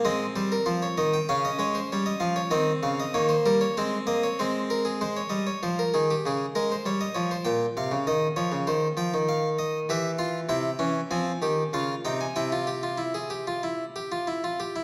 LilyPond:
<<
  \new Staff \with { instrumentName = "Harpsichord" } { \time 4/4 \key aes \mixolydian \tempo 4 = 97 << { ees''8 c''16 bes'16 c''16 des''16 ees''16 g''16 f''16 ees''16 des''16 c''16 des''16 ees''16 f''16 des''16 | ees''8 f''16 ees''16 des''16 c''16 bes'16 des''16 c''8 ees''16 des''16 c''8 bes'16 aes'16 | c''16 des''16 ees''16 des''16 c''16 bes'16 aes'16 g'16 aes'8 bes'16 c''16 des''16 ees''16 des''16 c''16 | g''8 f''8 ees''8 des''8 c''8 g''8 f''8 ees''8 |
\key c \phrygian e''8 f''8 g''4 aes''4 f''8 g''16 aes''16 | g''2.~ g''8 r8 | } \\ { c'2 des'2 | c'4 bes4 c'4 aes4 | r1 | r1 |
g'8 f'8 e'8 des'8 c'8 g'8 f'8 ees'8 | e'16 f'16 g'16 f'16 e'16 aes'16 g'16 f'16 e'8 g'16 f'16 e'16 f'16 g'16 e'16 | } >> }
  \new Staff \with { instrumentName = "Harpsichord" } { \clef bass \time 4/4 \key aes \mixolydian aes8 g8 f8 ees8 des8 aes8 g8 f8 | ees8 des8 ees8 g8 aes8 bes8 c'4 | aes8 g8 f8 ees8 des8 aes8 g8 f8 | bes,8 c16 des16 ees8 f16 des16 ees8 f16 ees4~ ees16 |
\key c \phrygian e4 c8 e8 f8 ees8 des8 c8 | c2.~ c8 r8 | }
>>